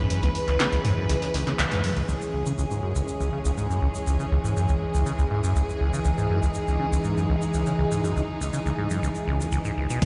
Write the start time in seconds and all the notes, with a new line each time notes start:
Already playing: E3 G#3 C#4 B4
0.10 F#2, closed hi-hat
0.22 C#2, snare, closed hi-hat
0.35 closed hi-hat, open hi-hat
0.48 C#2, clap, closed hi-hat
0.60 C#3, snare, clap, closed hi-hat
0.73 C#2, snare, closed hi-hat
0.85 G#2, closed hi-hat, mid tom, open hi-hat
0.97 F#2
1.09 C#2, snare, closed hi-hat
1.22 snare, closed hi-hat
1.34 C#2, snare, closed hi-hat, open hi-hat
1.47 C#3, snare, clap, closed hi-hat
1.59 C#2, snare, clap, closed hi-hat
1.71 G#2, snare, closed hi-hat, mid tom
1.84 F#2, snare, open hi-hat
1.97 C#2, closed hi-hat
2.09 C#2 E3 G#3 C#4 G#4, shaker
2.22 shaker
2.33 C#2
2.46 C#3, shaker
2.58 C#2, shaker
2.71 G#2, shaker
2.83 F#2
2.96 C#2, shaker
3.08 shaker
3.20 C#2, shaker
3.33 C#3
3.45 C#2, shaker
3.57 G#2, shaker
3.70 F#2, shaker
3.82 C#2
3.95 shaker
4.07 C#2, shaker
4.20 C#3, shaker
4.32 C#2
4.44 G#2, shaker
4.57 F#2, shaker
4.69 C#2, shaker
4.94 C#2, shaker
5.06 C#3, shaker
5.19 C#2, shaker
5.31 G#2
5.44 F#2, shaker
5.56 C#2, shaker
5.69 shaker
5.81 C#2
5.93 C#3, shaker
6.05 C#2 D#4, shaker
6.18 G#2, shaker
6.30 F#2
6.43 C#2, shaker
6.54 shaker
6.68 C#2, shaker
6.80 C#3
6.92 C#2, shaker
7.04 G#2, shaker
7.17 F#2, shaker
7.29 C#2
7.42 shaker
7.54 C#2, shaker
7.66 C#3, shaker
7.79 C#2
7.92 G#2, shaker
8.04 F#2, shaker
8.16 C#2, shaker
8.41 C#2, shaker
8.53 C#3, shaker
8.66 C#2, shaker
8.78 G#2
8.90 F#2, shaker
9.03 C#2, shaker
9.15 shaker
9.28 C#2
9.40 D#2, shaker
9.52 C#2, shaker
9.65 G#2, shaker
9.77 C#2
9.90 B2, shaker
10.02 C#2 E3 G#3 C#4 G#4, kick, closed hi-hat, crash, shaker